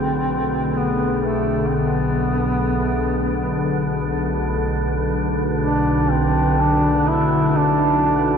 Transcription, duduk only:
0, 0, Header, 1, 2, 480
1, 0, Start_track
1, 0, Tempo, 967742
1, 869, Time_signature, 4, 2, 24, 8
1, 4154, End_track
2, 0, Start_track
2, 0, Title_t, "Duduk"
2, 0, Program_c, 0, 69
2, 0, Note_on_c, 0, 60, 106
2, 378, Note_on_c, 0, 59, 84
2, 386, Note_off_c, 0, 60, 0
2, 584, Note_off_c, 0, 59, 0
2, 584, Note_on_c, 0, 59, 49
2, 620, Note_on_c, 0, 57, 77
2, 628, Note_off_c, 0, 59, 0
2, 830, Note_on_c, 0, 60, 54
2, 837, Note_off_c, 0, 57, 0
2, 864, Note_on_c, 0, 59, 82
2, 871, Note_off_c, 0, 60, 0
2, 1826, Note_off_c, 0, 59, 0
2, 2791, Note_on_c, 0, 62, 84
2, 3031, Note_on_c, 0, 60, 78
2, 3038, Note_off_c, 0, 62, 0
2, 3277, Note_on_c, 0, 62, 91
2, 3285, Note_off_c, 0, 60, 0
2, 3514, Note_on_c, 0, 64, 91
2, 3522, Note_off_c, 0, 62, 0
2, 3751, Note_on_c, 0, 62, 81
2, 3758, Note_off_c, 0, 64, 0
2, 4154, Note_off_c, 0, 62, 0
2, 4154, End_track
0, 0, End_of_file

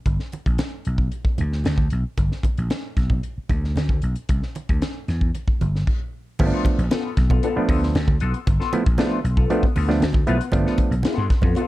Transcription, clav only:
0, 0, Header, 1, 2, 480
1, 0, Start_track
1, 0, Tempo, 527704
1, 58, Time_signature, 4, 2, 24, 8
1, 5338, Tempo, 516796
1, 10729, End_track
2, 0, Start_track
2, 0, Title_t, "Clav"
2, 0, Program_c, 0, 7
2, 5828, Note_on_c, 0, 57, 80
2, 5829, Note_on_c, 0, 53, 89
2, 5830, Note_on_c, 0, 59, 74
2, 5832, Note_on_c, 0, 61, 80
2, 5885, Note_off_c, 0, 61, 0
2, 5890, Note_on_c, 0, 62, 90
2, 6223, Note_off_c, 0, 57, 0
2, 6224, Note_off_c, 0, 53, 0
2, 6224, Note_off_c, 0, 59, 0
2, 6254, Note_off_c, 0, 62, 0
2, 6796, Note_on_c, 0, 59, 98
2, 6798, Note_on_c, 0, 62, 99
2, 6842, Note_off_c, 0, 59, 0
2, 6842, Note_off_c, 0, 62, 0
2, 6911, Note_on_c, 0, 53, 88
2, 6913, Note_on_c, 0, 59, 75
2, 6914, Note_on_c, 0, 57, 79
2, 6916, Note_on_c, 0, 62, 102
2, 7306, Note_off_c, 0, 53, 0
2, 7307, Note_off_c, 0, 57, 0
2, 7307, Note_off_c, 0, 59, 0
2, 7308, Note_off_c, 0, 62, 0
2, 7994, Note_on_c, 0, 53, 87
2, 7996, Note_on_c, 0, 57, 89
2, 7997, Note_on_c, 0, 64, 99
2, 7998, Note_on_c, 0, 59, 85
2, 8090, Note_off_c, 0, 53, 0
2, 8091, Note_off_c, 0, 57, 0
2, 8092, Note_off_c, 0, 59, 0
2, 8092, Note_off_c, 0, 64, 0
2, 8230, Note_on_c, 0, 53, 87
2, 8230, Note_on_c, 0, 57, 91
2, 8232, Note_on_c, 0, 59, 80
2, 8232, Note_on_c, 0, 62, 101
2, 8426, Note_off_c, 0, 57, 0
2, 8427, Note_off_c, 0, 53, 0
2, 8427, Note_off_c, 0, 59, 0
2, 8428, Note_off_c, 0, 62, 0
2, 8710, Note_on_c, 0, 53, 100
2, 8711, Note_on_c, 0, 59, 100
2, 8712, Note_on_c, 0, 57, 90
2, 8712, Note_on_c, 0, 62, 104
2, 8856, Note_off_c, 0, 53, 0
2, 8857, Note_off_c, 0, 57, 0
2, 8857, Note_off_c, 0, 59, 0
2, 8857, Note_off_c, 0, 62, 0
2, 9068, Note_on_c, 0, 53, 92
2, 9069, Note_on_c, 0, 57, 88
2, 9071, Note_on_c, 0, 59, 89
2, 9071, Note_on_c, 0, 62, 116
2, 9215, Note_off_c, 0, 53, 0
2, 9215, Note_off_c, 0, 57, 0
2, 9216, Note_off_c, 0, 59, 0
2, 9216, Note_off_c, 0, 62, 0
2, 9423, Note_on_c, 0, 53, 73
2, 9424, Note_on_c, 0, 57, 78
2, 9426, Note_on_c, 0, 59, 84
2, 9427, Note_on_c, 0, 64, 96
2, 9522, Note_off_c, 0, 53, 0
2, 9522, Note_off_c, 0, 57, 0
2, 9524, Note_off_c, 0, 59, 0
2, 9524, Note_off_c, 0, 64, 0
2, 9659, Note_on_c, 0, 59, 85
2, 9660, Note_on_c, 0, 53, 86
2, 9660, Note_on_c, 0, 57, 79
2, 9661, Note_on_c, 0, 62, 98
2, 10054, Note_off_c, 0, 53, 0
2, 10054, Note_off_c, 0, 59, 0
2, 10055, Note_off_c, 0, 57, 0
2, 10055, Note_off_c, 0, 62, 0
2, 10626, Note_on_c, 0, 59, 104
2, 10628, Note_on_c, 0, 65, 103
2, 10671, Note_off_c, 0, 59, 0
2, 10672, Note_off_c, 0, 65, 0
2, 10729, End_track
0, 0, End_of_file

